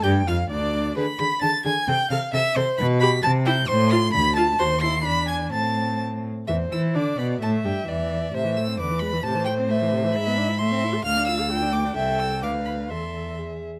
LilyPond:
<<
  \new Staff \with { instrumentName = "Violin" } { \time 2/4 \key a \minor \tempo 4 = 131 g'''8 f'''8 d'''4 | b''8 b'''8 a'''8 gis'''8 | g'''8 f'''8 e'''8 c'''8 | b''8 b'''8 a'''8 g'''8 |
c'''8 c''''8 b'''8 a'''8 | bis''8 bis'''8 b'''8 gis'''8 | a'''4 r4 | e''8 e'''8 d'''8 b''8 |
a''8 g''8 e''4 | e''8 e'''8 d'''8 b''8 | a''8 g''8 e''4 | b''4 c'''4 |
f'''8 e'''4 d'''8 | e''8 e'''8 d'''8 b''8 | c'''4 r4 | }
  \new Staff \with { instrumentName = "Violin" } { \time 2/4 \key a \minor g''8 f''8 d''4 | b'8 b''8 a''8 gis''8 | g''8 f''8 e''8 c''8 | b'8 b''8 a''8 g''8 |
c''8 c'''8 b''8 a''8 | bis'8 bis''8 b''8 gis''8 | a''4 r4 | c''4 d''4 |
e''4 d''4 | c''4 b'4 | c''2 | e''4 e''4 |
f''4 g''4 | g''4 f''4 | e''4. r8 | }
  \new Staff \with { instrumentName = "Viola" } { \time 2/4 \key a \minor g'8 f'8 d'4 | gis'8 gis'8 gis'8 gis'8 | a'8 a'8 a'8 a'8 | r8 g'16 r8. e'16 r16 |
r8 f'16 r8. f'16 r16 | fis'8 e'8 d'4 | c'4. r8 | e8 e'8 d'8 b8 |
a8 g8 e4 | c16 e16 a16 c'16 d16 e16 gis16 e16 | c16 e16 a16 c'16 a16 e16 c16 e16 | gis16 b16 d'16 e'16 a16 c'16 e'16 a'16 |
a16 d'16 f'16 a'16 f'16 d'16 a16 d'16 | a'4 b'4 | a'4 gis'8 r8 | }
  \new Staff \with { instrumentName = "Cello" } { \clef bass \time 2/4 \key a \minor g,8 f,8 d,4 | d8 d8 d8 d8 | c8 c8 c8 c8 | b,4 c4 |
a,4 d,4 | dis,4 e,4 | a,4. r8 | e,8 e8 d8 b,8 |
a,8 g,8 e,4 | a,4 e,4 | a,2 | gis,4 a,4 |
d,2 | c,4 d,4 | e,4. r8 | }
>>